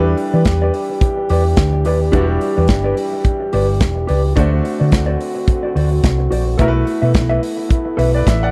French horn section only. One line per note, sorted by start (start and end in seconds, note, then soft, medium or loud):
0.00 4.32 E3 medium
0.00 4.32 D4 medium
0.00 4.32 G4 medium
4.35 6.57 D3 medium
4.35 6.57 C4 medium
4.35 6.57 F#4 medium
6.60 8.51 A3 medium
6.60 8.51 B3 medium
6.60 8.51 E4 medium